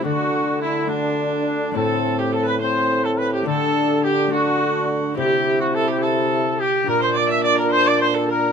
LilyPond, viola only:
\new Staff \with { instrumentName = "Viola" } { \time 6/8 \key d \mixolydian \tempo 4. = 70 fis'4 e'8 d'4. | a'8. g'16 a'16 b'16 c''8. a'16 b'16 g'16 | a'4 g'8 fis'4. | g'8. fis'16 a'16 g'16 a'4 g'8 |
bes'16 c''16 d''16 e''16 d''16 bes'16 c''16 d''16 c''16 a'16 bes'8 | }